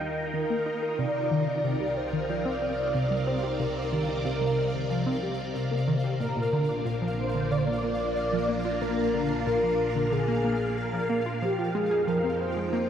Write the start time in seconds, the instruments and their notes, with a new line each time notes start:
Already playing: synth drone D#2, string machine D#3 D#4 F4 A#4 G5, synth texture F5
0.01 synth arpeggio sound D#4
0.34 synth arpeggio sound D#3, soft synth lead A#4
0.50 synth arpeggio sound A#3
0.66 synth arpeggio sound D#4
0.82 synth arpeggio sound A#4
0.98 synth drone C2, string machine C3, synth arpeggio sound C3, soft synth lead D5
1.31 synth arpeggio sound D#3
1.42 string machine D5
1.48 synth arpeggio sound D#4
1.64 synth arpeggio sound C3
1.74 string machine C4
1.80 synth arpeggio sound G3
1.97 soft synth lead C5
2.13 synth arpeggio sound D#3
2.29 synth arpeggio sound F3, soft synth lead D5
2.45 synth arpeggio sound C4
2.62 synth arpeggio sound C4
2.94 synth arpeggio sound C3
3.11 synth arpeggio sound G3
3.27 synth arpeggio sound C4, soft synth lead C5
3.43 synth arpeggio sound G4
3.60 synth arpeggio sound C3, soft synth lead A#4
3.92 synth arpeggio sound D#3
4.09 synth arpeggio sound D#4
4.25 synth arpeggio sound C3, soft synth lead A#4
4.41 synth arpeggio sound G3
4.74 synth arpeggio sound D#3
4.90 synth arpeggio sound F3
5.06 synth arpeggio sound C4
5.23 synth arpeggio sound G4
5.55 synth arpeggio sound C3
5.71 synth arpeggio sound A#3
5.88 synth arpeggio sound D#3
6.04 synth arpeggio sound G4
6.20 synth drone A#1, string machine A#2, synth arpeggio sound A#2, soft synth lead A#4
6.37 synth arpeggio sound A#2
6.53 synth arpeggio sound D3
6.68 string machine A#3, synth arpeggio sound D4
6.84 synth arpeggio sound A#2, string machine D4
7.02 synth arpeggio sound F3
7.19 soft synth lead C5
7.24 string machine F4
7.34 synth arpeggio sound D3
7.51 synth arpeggio sound D3, soft synth lead D5
7.58 soft synth lead C5
7.65 synth arpeggio sound A#3, soft synth lead D5
7.83 synth arpeggio sound A#3
8.32 synth arpeggio sound F3
8.48 synth arpeggio sound A#3, string machine F5
8.65 synth arpeggio sound F4
8.81 synth arpeggio sound A#2, soft synth lead A#4
8.98 synth arpeggio sound A#2
9.14 synth arpeggio sound D3
9.30 synth arpeggio sound D4
9.47 synth arpeggio sound A#2
9.63 synth arpeggio sound F3
9.95 synth arpeggio sound D3
10.12 synth arpeggio sound D3, soft synth lead G#4
10.28 synth arpeggio sound A#3
10.44 synth arpeggio sound A#3
10.77 soft synth lead A#4
10.93 synth arpeggio sound F3
11.10 synth arpeggio sound A#3
11.26 synth arpeggio sound F4
11.42 synth drone F2, string machine F3, synth arpeggio sound F3, soft synth lead G4
11.58 synth arpeggio sound F3
11.64 string machine D#4
11.75 synth arpeggio sound G#3, soft synth lead G#4
11.91 synth arpeggio sound G#4
12.07 synth arpeggio sound F3, string machine C4, soft synth lead A#4
12.24 synth arpeggio sound C4
12.31 string machine G5
12.41 soft synth lead C5
12.56 synth arpeggio sound G#3
12.73 synth arpeggio sound A#3